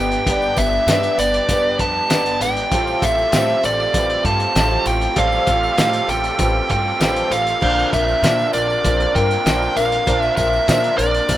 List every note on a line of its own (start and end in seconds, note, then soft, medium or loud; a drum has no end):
0.00 0.15 G1 medium
0.00 0.23 G2 medium
0.00 0.24 D3 medium
0.00 0.23 G3 medium
0.00 0.25 G3 medium
0.00 0.26 G3 soft
0.00 0.24 B3 medium
0.00 0.25 B3 medium
0.00 0.26 B3 medium
0.00 0.23 D4 medium
0.00 0.25 D4 medium
0.00 0.26 D4 medium
0.00 0.23 G4 medium
0.00 0.28 G4 loud
0.00 0.24 B4 medium
0.00 0.26 B4 medium
0.00 0.24 D5 medium
0.00 0.59 G5 medium
0.12 closed hi-hat medium
0.26 0.46 G1 medium
0.26 0.57 G2 medium
0.26 0.57 D3 medium
0.26 0.57 G3 medium
0.26 2.69 B3 medium
0.26 0.57 B3 medium
0.26 0.84 D4 medium
0.26 2.69 D4 medium
0.26 0.56 D4 medium
0.26 2.69 G4 medium
0.26 0.85 G4 medium
0.26 1.77 G4 loud
0.26 0.85 B4 medium
0.26 0.55 B4 medium
0.26 0.85 D5 medium
0.26 kick loud
0.26 closed hi-hat loud
0.42 tambourine soft
0.56 0.77 G1 medium
0.56 0.88 G3 soft
0.56 0.88 B3 medium
0.56 0.88 D4 medium
0.56 0.87 B4 medium
0.56 1.19 E5 medium
0.56 kick medium
0.56 closed hi-hat medium
0.56 tambourine medium
0.73 tambourine soft
0.87 1.07 G2 loud
0.87 1.18 G2 medium
0.87 1.18 D3 medium
0.87 1.19 G3 medium
0.87 1.19 B3 medium
0.87 1.45 D4 medium
0.87 1.18 D4 medium
0.87 1.46 G4 medium
0.87 1.46 B4 medium
0.87 1.16 B4 medium
0.87 1.46 D5 medium
0.87 snare loud
0.87 closed hi-hat loud
0.87 tambourine loud
1.03 closed hi-hat medium
1.03 tambourine soft
1.18 1.38 G1 medium
1.18 1.47 G3 soft
1.18 1.49 B3 soft
1.18 1.49 D4 medium
1.18 1.48 B4 medium
1.18 1.82 D5 medium
1.18 closed hi-hat medium
1.18 tambourine medium
1.34 closed hi-hat soft
1.34 tambourine soft
1.48 1.69 G1 medium
1.48 1.79 G3 medium
1.48 1.80 B3 medium
1.48 2.07 D4 medium
1.48 1.79 D4 medium
1.48 2.07 G4 medium
1.48 2.07 B4 medium
1.48 2.08 D5 medium
1.48 kick loud
1.48 closed hi-hat loud
1.48 tambourine medium
1.52 1.77 B4 medium
1.78 1.99 F2 medium
1.78 2.07 G2 medium
1.78 2.08 D3 medium
1.78 2.09 B3 soft
1.78 2.10 D4 medium
1.78 2.11 G4 medium
1.78 2.10 B4 medium
1.78 2.42 A5 medium
1.78 kick medium
1.78 closed hi-hat medium
1.82 2.09 G3 soft
2.09 2.30 G1 medium
2.09 2.40 G2 medium
2.09 2.41 D3 medium
2.09 2.41 G3 medium
2.09 2.41 B3 loud
2.09 2.68 D4 medium
2.09 2.40 D4 medium
2.09 2.68 G4 medium
2.09 2.73 G4 medium
2.09 2.69 B4 medium
2.09 2.39 B4 medium
2.09 2.69 D5 medium
2.09 snare loud
2.09 closed hi-hat loud
2.09 tambourine medium
2.26 closed hi-hat soft
2.26 tambourine soft
2.40 2.61 G#1 medium
2.40 2.71 G3 soft
2.40 2.72 B3 medium
2.40 2.72 D4 medium
2.40 2.71 B4 medium
2.40 3.05 G5 loud
2.40 closed hi-hat medium
2.40 tambourine medium
2.56 closed hi-hat soft
2.70 2.91 A1 medium
2.70 3.02 A2 medium
2.70 3.02 F3 medium
2.70 3.03 G3 medium
2.70 4.23 A3 medium
2.70 5.15 A3 medium
2.70 5.14 C4 medium
2.70 3.03 C4 medium
2.70 3.29 F4 medium
2.70 5.13 F4 medium
2.70 3.03 F4 medium
2.70 3.29 G4 medium
2.70 5.14 G4 medium
2.70 3.30 A4 medium
2.70 3.02 A4 medium
2.70 3.30 C5 medium
2.70 kick loud
2.70 closed hi-hat loud
2.87 tambourine soft
3.02 3.22 A1 medium
3.02 3.33 G3 soft
3.02 3.34 C4 medium
3.02 3.34 F4 medium
3.02 3.33 A4 medium
3.02 3.65 E5 medium
3.02 kick loud
3.02 closed hi-hat medium
3.02 tambourine medium
3.18 tambourine soft
3.31 3.53 A2 loud
3.31 3.64 A2 medium
3.31 3.64 F3 medium
3.31 3.64 G3 medium
3.31 3.64 C4 medium
3.31 3.90 F4 medium
3.31 3.63 F4 medium
3.31 3.91 G4 medium
3.31 3.91 A4 medium
3.31 3.62 A4 medium
3.31 3.91 C5 medium
3.31 snare loud
3.31 closed hi-hat loud
3.31 tambourine loud
3.49 tambourine soft
3.63 3.84 A1 medium
3.63 3.91 G3 soft
3.63 3.93 C4 medium
3.63 3.94 F4 medium
3.63 3.94 A4 medium
3.63 4.27 D5 medium
3.63 closed hi-hat medium
3.63 tambourine medium
3.80 tambourine soft
3.93 4.14 A1 medium
3.93 4.24 G3 medium
3.93 4.24 C4 medium
3.93 4.52 F4 medium
3.93 4.23 F4 medium
3.93 4.52 G4 medium
3.93 4.52 A4 medium
3.93 4.22 A4 medium
3.93 4.53 B4 medium
3.93 kick loud
3.93 closed hi-hat loud
3.93 tambourine medium
4.10 closed hi-hat soft
4.24 4.45 G2 medium
4.24 4.55 A2 medium
4.24 4.56 F3 medium
4.24 4.55 G3 soft
4.24 4.54 A3 medium
4.24 4.55 C4 soft
4.24 4.55 F4 soft
4.24 4.55 A4 medium
4.24 4.87 A5 medium
4.24 kick medium
4.24 closed hi-hat medium
4.40 closed hi-hat soft
4.54 4.75 A1 medium
4.54 4.86 A2 medium
4.54 4.86 F3 medium
4.54 4.86 G3 medium
4.54 5.16 A3 medium
4.54 4.86 C4 medium
4.54 5.13 F4 medium
4.54 4.86 F4 medium
4.54 5.13 G4 medium
4.54 5.14 A4 medium
4.54 4.84 A4 medium
4.54 5.14 C5 medium
4.54 snare loud
4.54 closed hi-hat loud
4.54 tambourine medium
4.86 5.06 A1 medium
4.86 5.15 G3 soft
4.86 5.15 C4 medium
4.86 5.16 F4 medium
4.86 5.16 A4 medium
4.86 5.18 G5 medium
4.86 closed hi-hat medium
4.86 tambourine medium
5.01 closed hi-hat soft
5.15 5.37 A1 loud
5.15 5.47 A2 medium
5.15 5.47 F3 medium
5.15 5.47 G3 medium
5.15 6.69 A3 medium
5.15 7.59 C4 medium
5.15 5.47 C4 medium
5.15 7.58 F4 medium
5.15 5.74 F4 medium
5.15 5.47 F4 medium
5.15 7.59 G4 medium
5.15 5.74 G4 medium
5.15 7.59 A4 medium
5.15 5.75 A4 medium
5.15 5.46 A4 medium
5.15 5.75 D5 medium
5.15 5.79 F5 medium
5.15 kick loud
5.15 closed hi-hat loud
5.32 tambourine soft
5.47 5.67 A1 medium
5.47 5.77 G3 soft
5.47 5.78 C4 soft
5.47 5.78 F4 medium
5.47 5.78 A4 medium
5.47 kick loud
5.47 closed hi-hat medium
5.47 tambourine medium
5.63 tambourine soft
5.77 6.08 A2 medium
5.77 5.98 A2 medium
5.77 6.09 F3 medium
5.77 6.09 G3 medium
5.77 6.09 C4 medium
5.77 6.36 F4 medium
5.77 6.08 F4 medium
5.77 6.36 G4 medium
5.77 6.37 A4 medium
5.77 6.06 A4 medium
5.77 6.37 C5 medium
5.77 6.11 F5 medium
5.77 snare loud
5.77 closed hi-hat loud
5.77 tambourine medium
5.93 closed hi-hat soft
5.93 tambourine soft
6.07 6.28 A1 medium
6.07 6.36 G3 soft
6.07 6.38 C4 medium
6.07 6.39 F4 soft
6.07 6.39 A4 medium
6.07 6.70 G5 loud
6.07 closed hi-hat medium
6.07 tambourine medium
6.24 closed hi-hat soft
6.24 tambourine soft
6.37 6.59 A1 loud
6.37 6.69 G3 medium
6.37 6.70 C4 medium
6.37 6.97 F4 medium
6.37 6.69 F4 medium
6.37 6.97 G4 medium
6.37 6.97 A4 medium
6.37 6.68 A4 medium
6.37 6.98 B4 medium
6.37 kick loud
6.37 closed hi-hat loud
6.37 tambourine medium
6.69 6.90 G2 medium
6.69 6.98 A2 medium
6.69 7.00 F3 medium
6.69 7.00 G3 soft
6.69 6.99 A3 medium
6.69 7.00 C4 soft
6.69 7.01 F4 medium
6.69 7.00 A4 medium
6.69 7.34 G5 medium
6.69 kick medium
6.69 closed hi-hat medium
6.99 7.20 A1 medium
6.99 7.31 A2 medium
6.99 7.31 F3 medium
6.99 7.32 G3 medium
6.99 7.61 A3 medium
6.99 7.30 C4 medium
6.99 7.58 F4 medium
6.99 7.29 F4 medium
6.99 7.58 G4 medium
6.99 7.58 A4 medium
6.99 7.28 A4 medium
6.99 7.59 B4 medium
6.99 snare loud
6.99 closed hi-hat loud
6.99 tambourine medium
7.16 closed hi-hat soft
7.16 tambourine soft
7.30 7.51 A1 medium
7.30 7.61 G3 soft
7.30 7.61 C4 soft
7.30 7.62 F4 medium
7.30 7.61 A4 medium
7.30 7.89 F5 medium
7.30 closed hi-hat medium
7.30 tambourine medium
7.47 closed hi-hat medium
7.47 tambourine soft
7.60 7.82 A#1 loud
7.60 7.92 A#2 medium
7.60 7.92 D3 medium
7.60 7.92 F3 medium
7.60 9.13 A#3 medium
7.60 10.04 C4 medium
7.60 7.93 C4 medium
7.60 10.04 D4 medium
7.60 7.92 D4 medium
7.60 8.19 F4 medium
7.60 10.04 F4 medium
7.60 9.13 F4 loud
7.60 8.20 A#4 medium
7.60 10.04 A#4 medium
7.60 7.90 A#4 medium
7.60 8.20 C5 medium
7.60 8.20 D5 medium
7.60 kick loud
7.60 crash loud
7.79 tambourine soft
7.92 8.13 A#1 medium
7.92 8.22 F3 soft
7.92 8.23 C4 medium
7.92 8.23 D4 medium
7.92 8.23 A#4 soft
7.92 8.50 E5 medium
7.92 kick medium
7.92 closed hi-hat medium
7.92 tambourine medium
8.08 tambourine soft
8.22 8.43 A#2 loud
8.22 8.54 A#2 medium
8.22 8.54 D3 medium
8.22 8.54 F3 medium
8.22 8.54 C4 medium
8.22 8.53 D4 medium
8.22 8.81 F4 medium
8.22 8.81 A#4 medium
8.22 8.51 A#4 medium
8.22 8.82 C5 medium
8.22 8.82 D5 medium
8.22 snare loud
8.22 closed hi-hat loud
8.22 tambourine medium
8.39 tambourine soft
8.52 8.74 A#1 medium
8.52 8.82 F3 soft
8.52 8.83 C4 medium
8.52 8.84 D4 medium
8.52 8.84 A#4 soft
8.52 9.17 D5 medium
8.52 closed hi-hat medium
8.52 tambourine medium
8.70 tambourine soft
8.83 9.05 A#1 loud
8.83 9.14 F3 medium
8.83 9.15 C4 medium
8.83 9.15 D4 medium
8.83 9.42 F4 medium
8.83 9.43 A#4 medium
8.83 9.14 A#4 medium
8.83 9.43 C5 medium
8.83 9.43 D5 medium
8.83 kick loud
8.83 closed hi-hat loud
8.83 tambourine medium
9.00 closed hi-hat soft
9.14 9.35 G2 medium
9.14 9.45 D3 medium
9.14 9.44 A#3 medium
9.14 9.45 C4 soft
9.14 9.46 D4 soft
9.14 9.43 F4 medium
9.14 9.46 A#4 medium
9.14 9.78 G5 medium
9.14 kick medium
9.14 closed hi-hat medium
9.18 9.44 A#2 medium
9.18 9.45 F3 soft
9.31 closed hi-hat soft
9.45 9.66 A#1 medium
9.45 9.76 A#2 medium
9.45 9.76 D3 medium
9.45 9.76 F3 medium
9.45 10.06 A#3 medium
9.45 9.76 C4 medium
9.45 9.75 D4 medium
9.45 10.03 F4 medium
9.45 10.03 A#4 medium
9.45 9.74 A#4 medium
9.45 10.04 C5 medium
9.45 10.04 D5 medium
9.45 snare loud
9.45 closed hi-hat medium
9.45 tambourine medium
9.49 10.07 F4 medium
9.62 tambourine soft
9.75 9.96 A#1 medium
9.75 10.05 F3 medium
9.75 10.06 C4 medium
9.75 10.06 D4 medium
9.75 10.06 A#4 medium
9.75 10.21 F5 loud
9.75 closed hi-hat medium
9.75 tambourine medium
9.92 closed hi-hat soft
10.06 10.27 A#1 loud
10.06 10.37 A#2 medium
10.06 10.37 D3 medium
10.06 10.37 F3 medium
10.06 11.38 A#3 medium
10.06 11.38 C4 medium
10.06 10.37 C4 medium
10.06 11.38 D4 medium
10.06 10.36 D4 medium
10.06 10.64 F4 medium
10.06 11.38 F4 medium
10.06 11.38 A#4 medium
10.06 10.65 A#4 medium
10.06 10.35 A#4 medium
10.06 10.65 C5 medium
10.06 10.66 D5 medium
10.06 kick loud
10.06 closed hi-hat loud
10.10 11.38 F4 medium
10.21 10.36 E5 loud
10.21 tambourine soft
10.36 10.57 A#1 medium
10.36 10.67 F3 soft
10.36 10.67 C4 soft
10.36 10.68 D4 soft
10.36 10.67 A#4 medium
10.36 10.97 E5 medium
10.36 kick loud
10.36 closed hi-hat medium
10.36 tambourine medium
10.53 tambourine soft
10.67 10.98 A#2 medium
10.67 10.88 A#2 medium
10.67 10.98 D3 medium
10.67 10.99 F3 medium
10.67 10.98 C4 medium
10.67 10.97 D4 medium
10.67 11.25 F4 medium
10.67 11.26 A#4 medium
10.67 10.95 A#4 medium
10.67 11.26 C5 medium
10.67 11.26 D5 medium
10.67 snare loud
10.67 closed hi-hat loud
10.67 tambourine medium
10.84 closed hi-hat soft
10.84 tambourine soft
10.97 11.18 A#1 medium
10.97 11.26 F3 soft
10.97 11.27 C4 soft
10.97 11.28 D4 medium
10.97 11.28 A#4 medium
10.97 11.38 D5 medium
10.97 closed hi-hat medium
10.97 tambourine medium
11.14 closed hi-hat soft
11.14 tambourine soft
11.27 11.38 A#1 loud
11.27 11.38 F3 medium
11.27 11.38 C4 medium
11.27 11.38 D4 medium
11.27 11.38 F4 medium
11.27 11.38 A#4 medium
11.27 11.38 C5 medium
11.27 11.38 E5 medium
11.27 kick loud
11.27 closed hi-hat loud
11.27 tambourine medium